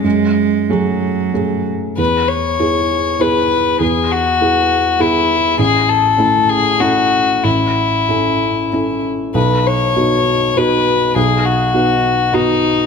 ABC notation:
X:1
M:3/4
L:1/8
Q:1/4=99
K:E
V:1 name="Violin"
z6 | B c3 B2 | G F3 E2 | G A2 G F2 |
E4- E z | B c3 B2 | G F3 D2 |]
V:2 name="Felt piano"
F,,2 [A,CG]2 [A,CG]2 | E,,2 [B,EG]2 [B,EG]2 | E,,2 [B,EG]2 [B,EG]2 | A,,,2 [A,CE]2 [CEA]2 |
A,,,2 [CEA]2 [CEA]2 | B,,,2 [B,DF]2 [B,DF]2 | B,,,2 [B,DF]2 [B,DF]2 |]
V:3 name="Cello" clef=bass
G,2 F,3 z | z6 | z6 | z6 |
z6 | z6 | z6 |]